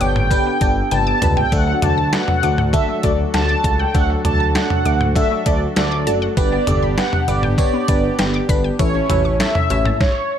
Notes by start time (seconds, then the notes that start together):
Already playing: B3 D4 A4
0.01 G1 B3 D4 G4 C#5 G5 D6, closed hi-hat
0.16 G5, mid tom
0.31 D3 B3 D4 G4 B4, kick, closed hi-hat
0.46 B3
0.61 G1 B3 D4 G4 A4 D5, kick, closed hi-hat
0.91 G1 B3 D4 G4 B4 G5 A5, closed hi-hat, high tom
1.07 D6
1.22 C#2 B3 D4 G4 B4 B5, closed hi-hat, mid tom
1.37 G5, floor tom
1.52 D2 D3 F#3 A3 D4 F#4 A4 F#5, kick, closed hi-hat
1.67 A3
1.82 D2 A3 D4 F#4 A4 D5 A5, closed hi-hat, mid tom
1.98 A5
2.13 A3 D4 F#4 B4 F#5, snare, closed hi-hat
2.28 mid tom
2.43 D2 A3 D4 F#4 A4 D6, closed hi-hat
2.58 F#5, mid tom
2.73 D3 A3 D4 F#4 A4 E5, kick, closed hi-hat
2.88 A3
3.03 D2 A3 D4 F#4 A4 D5, kick, closed hi-hat
3.34 D2 A3 D4 F#4 A4 F#5 A5, snare, closed hi-hat
3.49 D6
3.64 C#2 A3 D4 F#4 A4 A5, kick, closed hi-hat
3.79 F#5 G5
3.94 D2 D3 A3 D4 F#4 A4 F#5, kick, closed hi-hat
4.10 A3
4.25 D2 A3 D4 F#4 A4 D5 A5, closed hi-hat, mid tom
4.40 A5
4.55 A3 D4 F#4 A4 F#5, snare, closed hi-hat
4.70 mid tom
4.85 D2 A3 D4 F#4 A4 D6, closed hi-hat
5.01 F#5, mid tom
5.16 D3 A3 D4 F#4 A4 E5, kick, closed hi-hat
5.31 A3
5.46 D2 A3 D4 F#4 A4 D5, kick, closed hi-hat
5.76 D2 A3 D4 F#4 A4 D5 F#5, snare, closed hi-hat
5.92 D6
6.07 F#1 A3 D4 F#4 A4 A5, closed hi-hat
6.22 F#5
6.37 G1 D3 B3 D4 G4 B4 D5, kick, closed hi-hat
6.52 B3
6.67 G1 B3 D4 G4 A4 D5, closed hi-hat, mid tom
6.83 B5
6.98 B3 D4 G4 B4 F#5 G5, snare, closed hi-hat
7.13 mid tom
7.28 G1 B3 D4 G4 B4 D5 D6, closed hi-hat
7.43 G5, mid tom
7.58 D3 B3 D4 G4 C#5 D5, kick, closed hi-hat
7.73 B3
7.88 G1 B3 D4 G4 B4 D5, kick, closed hi-hat
8.19 G1 B3 D4 G4 B4 G5, snare, closed hi-hat
8.34 D6
8.49 G1 B3 D4 G4 B4 B5, kick, closed hi-hat
8.64 G5
8.79 A1 E3 A3 C#4 E4 A4 C#5, kick, closed hi-hat
8.95 C#4
9.10 A1 C#4 E4 A4 B4 E5, closed hi-hat, mid tom, cowbell
9.25 C#6
9.40 C#4 E4 A4 C#5 E5 A5, snare, closed hi-hat
9.55 mid tom
9.70 A1 C#4 E4 A4 C#5 E6, closed hi-hat, cowbell
9.85 A5, mid tom
10.01 C#5, kick, snare